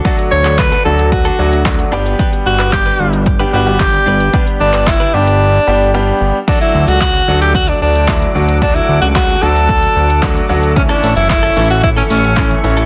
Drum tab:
CC |----------------|----------------|----------------|x---------------|
HH |xx-xxx-xxx-xxx-x|xx-xxx-xxx-xxx-x|xx-xxx-x--------|xx-xxx-xxx-xxx-x|
CP |---xx-------x---|---xx-------x---|---xx-----------|----x-------x---|
SD |----o-------o---|----o-------o---|----o-----------|----o-------o---|
BD |o---o---o---o---|o---o---o---o---|o---o-----------|o---o---o---o---|

CC |----------------|----------------|
HH |xx-xxx-xxx-xxx-x|xxoxxxoxxxoxxxox|
CP |----x-------x---|----x-------x---|
SD |----o-------o---|----o-------o---|
BD |o---o---o---o---|o---o---o---o---|